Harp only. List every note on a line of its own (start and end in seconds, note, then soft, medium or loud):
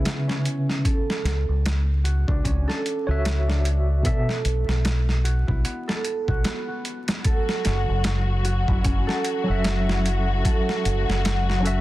0.00 2.35 B3 medium
0.00 0.27 C#4 medium
0.00 2.49 E4 medium
0.00 0.91 G#4 loud
0.28 2.34 C#4 medium
0.85 2.67 A4 medium
2.04 3.07 F#4 medium
2.28 2.50 D4 medium
2.44 3.53 C#4 medium
2.68 4.04 A4 loud
3.08 5.23 F#4 medium
3.47 6.27 D4 medium
4.04 5.87 A4 medium
5.24 6.28 F#4 medium
5.47 8.08 E4 medium
5.65 6.44 B3 medium
5.88 7.25 A4 loud
6.28 6.68 F#4 loud
6.45 9.55 B3 loud
6.68 8.44 F#4 medium
7.25 9.07 A4 medium
8.45 9.47 F#4 medium
8.68 9.87 E4 medium
8.84 11.73 C#4 medium
9.07 10.43 A4 loud
9.47 11.63 F#4 medium
9.88 11.81 E4 medium
10.44 11.81 A4 medium
11.64 11.81 F#4 medium